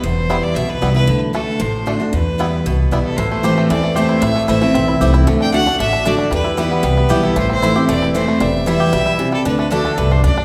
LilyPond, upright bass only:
\new Staff \with { instrumentName = "Upright bass" } { \clef bass \time 4/4 \key a \dorian \tempo 4 = 230 e,,2 b,,4 c,4 | d,2 a,,2 | e,2 c,4 b,,4 | a,,2 e,2 |
a,,4 a,,4 b,,4 c,4 | d,2 a,,2 | e,2 c,4 b,,4 | a,,2 e,,2 |
e,,2 b,,2 | d,2 c,4 d,4 | }